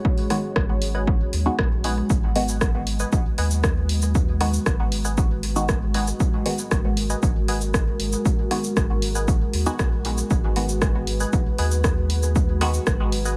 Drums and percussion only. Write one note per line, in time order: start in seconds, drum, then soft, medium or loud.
0.05 kick loud
0.18 open hi-hat soft
0.30 cross-stick soft
0.30 open hi-hat medium
0.56 kick loud
0.56 cross-stick medium
0.82 open hi-hat medium
1.07 kick loud
1.33 open hi-hat medium
1.59 kick loud
1.59 cross-stick medium
1.84 open hi-hat medium
2.10 kick loud
2.10 shaker soft
2.36 open hi-hat medium
2.48 shaker medium
2.61 kick loud
2.61 cross-stick medium
2.61 shaker soft
2.87 open hi-hat medium
3.00 shaker medium
3.12 kick loud
3.12 shaker soft
3.38 open hi-hat medium
3.51 shaker medium
3.64 kick loud
3.64 cross-stick medium
3.64 shaker soft
3.89 open hi-hat medium
4.02 shaker medium
4.15 kick loud
4.15 shaker soft
4.41 cross-stick soft
4.41 open hi-hat medium
4.53 shaker medium
4.66 kick loud
4.66 cross-stick medium
4.66 shaker soft
4.92 open hi-hat medium
5.05 shaker medium
5.18 kick loud
5.18 shaker soft
5.43 open hi-hat medium
5.56 shaker medium
5.69 kick loud
5.69 cross-stick medium
5.69 shaker soft
5.94 open hi-hat medium
6.07 shaker medium
6.20 kick loud
6.20 shaker soft
6.46 open hi-hat medium
6.59 shaker medium
6.71 kick loud
6.71 cross-stick medium
6.71 shaker soft
6.97 open hi-hat medium
7.10 shaker medium
7.23 kick loud
7.23 shaker soft
7.48 open hi-hat medium
7.61 shaker medium
7.74 kick loud
7.74 cross-stick medium
7.74 shaker soft
8.00 open hi-hat medium
8.12 shaker medium
8.25 kick loud
8.25 shaker soft
8.51 cross-stick soft
8.51 open hi-hat medium
8.64 shaker medium
8.77 kick loud
8.77 cross-stick medium
8.77 shaker soft
9.02 open hi-hat medium
9.15 shaker soft
9.28 kick loud
9.28 shaker soft
9.53 open hi-hat medium
9.66 shaker soft
9.79 kick loud
9.79 cross-stick medium
9.79 shaker soft
10.05 open hi-hat medium
10.18 shaker soft
10.30 kick loud
10.30 shaker soft
10.56 open hi-hat medium
10.69 shaker soft
10.82 kick loud
10.82 cross-stick medium
10.82 shaker soft
11.07 open hi-hat medium
11.20 shaker soft
11.33 kick loud
11.33 shaker soft
11.58 open hi-hat medium
11.71 shaker soft
11.84 kick loud
11.84 cross-stick medium
11.84 shaker soft
12.10 open hi-hat medium
12.23 shaker soft
12.36 kick loud
12.36 shaker soft
12.61 cross-stick soft
12.61 open hi-hat medium
12.74 shaker soft
12.87 kick loud
12.87 cross-stick medium
12.87 shaker soft
13.12 open hi-hat medium
13.25 shaker soft